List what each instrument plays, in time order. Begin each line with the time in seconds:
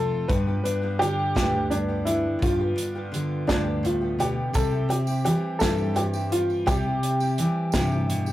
Already playing: fingered electric bass C2, steel-string acoustic guitar F2 C3 F3 A3 C4 F4 A4, upright piano A4
0.28 steel-string acoustic guitar G2 D3 F3 B3 F4 G4, fingered electric bass G2, upright piano B4, kick, closed hi-hat
0.47 steel-string acoustic guitar F3 B3 F4 G4
0.64 steel-string acoustic guitar D4, upright piano B4, closed hi-hat
0.82 steel-string acoustic guitar F3 B3 F4 G4
0.99 steel-string acoustic guitar D3 F3 B3 F4 G4, upright piano G4, closed hi-hat
1.35 fingered electric bass D2, steel-string acoustic guitar G2 D3 F3 B3 F4 G4, kick, snare, closed hi-hat
1.53 steel-string acoustic guitar F3 B3 F4 G4
1.70 steel-string acoustic guitar G2, upright piano D4, closed hi-hat
1.88 steel-string acoustic guitar F3 B3 F4 G4
2.05 steel-string acoustic guitar F3 B3 D4 G4, upright piano E4, closed hi-hat
2.39 steel-string acoustic guitar G2 D3, fingered electric bass G2, upright piano F4, kick, closed hi-hat
2.43 steel-string acoustic guitar F3 B3 F4 G4
2.60 steel-string acoustic guitar F3 B3 F4 G4
2.76 steel-string acoustic guitar D4, closed hi-hat
2.95 steel-string acoustic guitar F3 B3 F4 G4
3.12 steel-string acoustic guitar D3 F3 B3 F4 G4, closed hi-hat
3.47 fingered electric bass D2, steel-string acoustic guitar G2 D3 F3 B3 F4 G4, upright piano D4, kick, snare, closed hi-hat
3.64 steel-string acoustic guitar F3 B3 F4 G4
3.83 steel-string acoustic guitar A2, upright piano F4, closed hi-hat
4.01 steel-string acoustic guitar F3 B3 F4 G4
4.18 steel-string acoustic guitar B2 F3 B3 F4 G4, upright piano G4, closed hi-hat
4.53 fingered electric bass C2, steel-string acoustic guitar C3 G3 C4 E4 G4, upright piano A4, kick, closed hi-hat, tambourine
4.72 steel-string acoustic guitar C4 E4 G4
4.89 steel-string acoustic guitar C4, upright piano G4, closed hi-hat
5.07 steel-string acoustic guitar C4 E4 G4, tambourine
5.24 steel-string acoustic guitar E3 G3 C4 E4 G4, upright piano G4, closed hi-hat, tambourine
5.59 fingered electric bass G2, steel-string acoustic guitar C3 G3 C4 E4 G4, upright piano A4, kick, snare, closed hi-hat, tambourine
5.78 steel-string acoustic guitar C4 E4 G4, tambourine
5.94 steel-string acoustic guitar G2, upright piano G4, closed hi-hat
6.14 steel-string acoustic guitar C4 E4 G4, tambourine
6.32 steel-string acoustic guitar G3 C4 G4, upright piano F4, closed hi-hat
6.50 tambourine
6.66 fingered electric bass C2, steel-string acoustic guitar C3 G3 C4 E4 G4, upright piano G4, kick, closed hi-hat, tambourine
6.85 steel-string acoustic guitar C4 E4 G4
7.03 closed hi-hat
7.20 steel-string acoustic guitar C4 E4 G4, tambourine
7.38 steel-string acoustic guitar E3 G3 C4 E4 G4, closed hi-hat, tambourine
7.72 fingered electric bass G2, steel-string acoustic guitar C3 G3 C4 E4 G4, kick, snare, closed hi-hat, tambourine
7.91 steel-string acoustic guitar C4 E4 G4, tambourine
8.10 steel-string acoustic guitar B2, closed hi-hat
8.26 steel-string acoustic guitar C4 E4 G4, tambourine